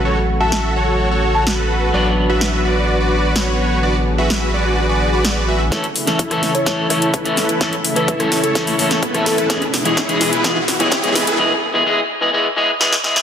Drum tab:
HH |----------------|----------------|----------------|xxoxxxoxx-oxxxox|
SD |----o-------o---|----o-------o---|----o-------o---|o--o-ro-o-r---o-|
BD |----------------|----------------|----------------|o---o---o---o---|

HH |xxoxxxoxxooxxxox|xxoxxxoxx-oxxxox|----------------|
SD |o----ro-o--o-ror|o-o-o-o-o-o-o-o-|------------oooo|
BD |o---o---o---o---|o---o---o---o---|----------------|